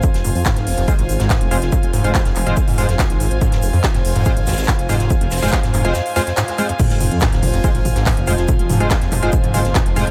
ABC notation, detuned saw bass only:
X:1
M:4/4
L:1/16
Q:1/4=142
K:Fm
V:1 name="Detuned saw bass" clef=bass
z F,,, F,,, F,, z F,,, F,,, F,,, z A,,, A,,, A,,, z F,,, F,,, F,,, | z F,,, F,,, F,,, z F,,, F,,, F,,, z F,,, F,,, F,,, z A,,, A,,, A,,, | z F,,, F,,, F,, z F,,, F,,, F,,, z A,,, A,,, A,,, z F,,, F,,, F,,, | z F,,, F,,, F,,, z F,,, F,,, F,,, z8 |
z F,,, F,,, F,, z F,,, F,,, F,,, z A,,, A,,, A,,, z F,,, F,,, F,,, | z F,,, F,,, F,,, z F,,, F,,, F,,, z F,,, _G,,, G,,, z F,,, F,,, F,,, |]